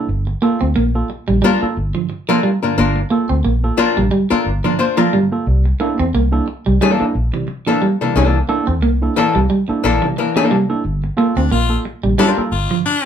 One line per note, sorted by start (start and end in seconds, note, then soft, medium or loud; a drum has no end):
0.09 0.33 G1 loud
0.09 0.26 G2 medium
0.09 0.26 D3 medium
0.27 muted clean electric guitar stroke soft
0.42 0.56 A#3 medium
0.42 0.60 A#3 medium
0.42 0.60 F4 medium
0.42 0.60 A4 loud
0.61 0.72 D2 medium
0.61 0.72 C4 medium
0.61 0.68 F4 soft
0.61 0.68 A4 soft
0.76 1.01 A#1 medium
0.76 0.89 A#3 medium
0.95 1.09 A#3 medium
0.95 1.09 F4 medium
0.95 1.09 A4 medium
1.10 muted clean electric guitar stroke soft
1.28 1.40 A#1 medium
1.28 1.43 G2 medium
1.28 1.42 D3 soft
1.28 1.39 G3 medium
1.42 1.56 G3 medium
1.42 1.65 A#3 medium
1.42 1.65 D4 medium
1.42 1.65 F4 loud
1.42 1.66 A#4 loud
1.61 1.76 A#3 medium
1.61 1.76 F4 medium
1.61 1.76 A4 medium
1.61 muted clean electric guitar stroke soft
1.61 muted fingered electric bass stroke soft
1.77 1.91 G1 medium
1.95 2.09 G2 medium
1.95 2.09 D3 medium
1.95 2.06 F3 medium
2.10 muted clean electric guitar stroke soft
2.29 2.40 F3 medium
2.29 2.43 A#3 medium
2.29 2.48 A#3 medium
2.29 2.47 D4 medium
2.29 2.43 F4 medium
2.29 2.47 F4 medium
2.29 2.43 A4 medium
2.29 2.47 A#4 loud
2.43 2.57 G3 medium
2.63 2.76 G2 medium
2.63 2.76 D3 medium
2.63 2.77 A#3 medium
2.63 2.77 D4 medium
2.63 2.77 F4 medium
2.63 2.76 A#4 medium
2.77 3.02 G1 loud
2.77 2.95 G2 medium
2.77 2.95 D3 medium
2.77 2.99 A#3 medium
2.77 2.99 D4 medium
2.77 2.99 F4 medium
2.77 3.00 A#4 medium
2.96 muted clean electric guitar stroke soft
3.10 3.24 A#3 medium
3.10 3.28 A#3 medium
3.10 3.28 F4 medium
3.10 3.29 A4 medium
3.29 3.41 D2 medium
3.29 3.40 C4 medium
3.29 3.36 F4 soft
3.29 3.36 A4 soft
3.44 3.69 A#1 medium
3.44 3.58 A#3 medium
3.64 3.77 A#3 medium
3.64 3.77 F4 medium
3.64 3.77 A4 medium
3.77 3.99 A#3 medium
3.77 3.99 D4 loud
3.77 4.00 F4 loud
3.77 4.00 A#4 loud
3.77 muted clean electric guitar stroke soft
3.97 4.08 A#1 medium
3.97 4.11 G2 medium
3.97 4.11 D3 medium
3.97 4.08 G3 medium
4.11 4.25 G3 medium
4.30 4.44 A#3 medium
4.30 4.49 A#3 medium
4.30 4.49 D4 medium
4.30 4.49 F4 medium
4.30 4.45 F4 medium
4.30 4.45 A4 medium
4.30 4.49 A#4 medium
4.30 muted clean electric guitar stroke soft
4.30 muted fingered electric bass stroke soft
4.46 4.60 G1 loud
4.64 4.78 G2 medium
4.64 4.78 D3 medium
4.64 4.75 F3 medium
4.64 4.78 A#3 soft
4.64 4.78 D4 medium
4.64 4.78 F4 medium
4.64 4.78 A#4 medium
4.79 4.96 A#3 medium
4.79 4.96 D4 medium
4.79 4.96 F4 medium
4.79 4.97 C5 medium
4.79 muted clean electric guitar stroke soft
4.97 5.08 F3 medium
4.97 5.11 A#3 medium
4.97 5.16 A#3 medium
4.97 5.16 D4 medium
4.97 5.16 F4 medium
4.97 5.12 F4 medium
4.97 5.12 A4 medium
4.97 5.16 A#4 medium
5.13 5.31 G2 medium
5.13 5.30 D3 medium
5.13 5.27 G3 medium
5.32 5.45 A#3 medium
5.32 5.46 F4 medium
5.32 5.46 A4 medium
5.47 5.71 C2 loud
5.47 5.64 C3 medium
5.47 5.64 G3 medium
5.65 muted clean electric guitar stroke soft
5.80 5.97 A#3 medium
5.80 5.93 A#3 medium
5.80 5.97 D4 medium
5.80 5.97 E4 medium
5.80 5.97 A4 medium
5.99 6.10 E2 medium
5.99 6.10 C4 medium
5.99 6.05 E4 soft
5.99 6.05 A4 soft
6.14 6.38 C2 medium
6.14 6.28 A#3 medium
6.32 6.46 A#3 medium
6.32 6.46 D4 medium
6.32 6.46 E4 medium
6.32 6.46 A4 medium
6.48 muted clean electric guitar stroke soft
6.66 6.78 C2 medium
6.66 6.80 C3 medium
6.66 6.77 G3 medium
6.66 6.80 G3 medium
6.81 7.03 E3 medium
6.81 6.95 G3 loud
6.81 7.03 A#3 medium
6.81 7.03 D4 medium
6.81 7.04 A4 medium
7.00 7.13 A#3 medium
7.00 7.13 D4 medium
7.00 7.14 E4 medium
7.00 7.14 A4 medium
7.00 muted clean electric guitar stroke medium
7.00 muted fingered electric bass stroke soft
7.15 7.29 A#1 loud
7.33 7.47 C3 medium
7.33 7.44 E3 medium
7.33 7.47 G3 medium
7.48 muted clean electric guitar stroke soft
7.67 7.77 E3 medium
7.67 7.86 E3 medium
7.67 7.80 A#3 medium
7.67 7.85 A#3 medium
7.67 7.81 D4 medium
7.67 7.85 D4 medium
7.67 7.81 E4 medium
7.67 7.85 A4 medium
7.67 7.81 A4 medium
7.82 7.95 G3 medium
8.01 8.14 C3 medium
8.01 8.14 E3 soft
8.01 8.14 G3 medium
8.01 8.15 A#3 medium
8.01 8.15 D4 medium
8.01 8.14 A4 medium
8.16 8.40 C2 medium
8.16 8.33 C3 medium
8.16 8.37 E3 medium
8.16 8.33 G3 medium
8.16 8.38 A#3 medium
8.16 8.38 D4 medium
8.16 8.38 A4 medium
8.34 muted clean electric guitar stroke soft
8.48 8.66 A#3 medium
8.48 8.62 A#3 medium
8.48 8.66 D4 medium
8.48 8.66 E4 medium
8.48 8.66 A4 loud
8.67 8.83 E2 medium
8.67 8.78 C4 medium
8.67 8.74 E4 soft
8.67 8.74 A4 soft
8.82 9.07 C2 medium
8.82 8.96 A#3 medium
9.02 9.15 A#3 medium
9.02 9.15 D4 medium
9.02 9.15 E4 medium
9.02 9.15 A4 medium
9.16 9.38 E3 medium
9.16 9.38 A#3 medium
9.16 9.38 D4 medium
9.16 9.38 A4 loud
9.16 muted clean electric guitar stroke soft
9.35 9.46 C2 medium
9.35 9.49 C3 medium
9.35 9.46 G3 medium
9.35 9.49 G3 medium
9.50 9.63 G3 medium
9.68 9.82 A#3 medium
9.68 9.82 D4 medium
9.68 9.82 E4 medium
9.68 9.82 A4 medium
9.68 muted clean electric guitar stroke soft
9.68 muted fingered electric bass stroke soft
9.84 9.98 A#1 medium
9.84 10.05 E3 medium
9.84 10.05 A#3 medium
9.84 10.05 D4 medium
9.84 10.06 A4 loud
10.02 10.16 C3 medium
10.02 10.13 E3 medium
10.02 10.16 G3 medium
10.17 10.35 E3 medium
10.17 10.35 A#3 medium
10.17 10.35 D4 medium
10.17 10.35 A#4 medium
10.17 muted clean electric guitar stroke soft
10.36 10.46 E3 medium
10.36 10.55 E3 medium
10.36 10.49 A#3 medium
10.36 10.55 A#3 medium
10.36 10.49 D4 medium
10.36 10.55 D4 medium
10.36 10.50 E4 medium
10.36 10.50 A4 medium
10.36 10.55 A4 medium
10.51 10.68 C3 medium
10.51 10.64 G3 medium
10.51 10.68 G3 medium
10.69 10.83 A#3 medium
10.69 10.83 D4 medium
10.69 10.83 E4 medium
10.69 10.83 A4 medium
10.85 11.09 G1 loud
10.85 11.01 G2 medium
10.85 11.02 D3 medium
11.04 muted clean electric guitar stroke soft
11.17 11.34 A#3 medium
11.17 11.31 A#3 medium
11.17 11.35 F4 medium
11.17 11.35 A4 loud
11.36 11.47 D2 medium
11.36 11.47 C4 medium
11.36 11.48 D4 medium
11.36 11.42 F4 soft
11.36 11.43 A4 soft
11.51 11.76 A#1 medium
11.51 11.65 A#3 medium
11.51 11.79 F4 loud
11.69 11.83 A#3 medium
11.69 11.84 F4 medium
11.69 11.84 A4 medium
11.85 muted clean electric guitar stroke soft
12.03 12.15 A#1 medium
12.03 12.18 G2 medium
12.03 12.17 D3 medium
12.03 12.14 G3 medium
12.18 12.32 G3 medium
12.18 12.40 G3 medium
12.18 12.30 D4 loud
12.18 12.41 D4 medium
12.18 12.41 F4 medium
12.18 12.41 A#4 medium
12.37 12.51 A#3 medium
12.37 12.51 F4 medium
12.37 12.51 A4 medium
12.37 muted clean electric guitar stroke soft
12.37 muted fingered electric bass stroke soft
12.52 12.66 G1 medium
12.52 12.79 F4 loud
12.71 12.85 G2 medium
12.71 12.85 D3 medium
12.71 12.81 F3 medium
12.86 13.05 D4 loud
12.86 muted clean electric guitar stroke soft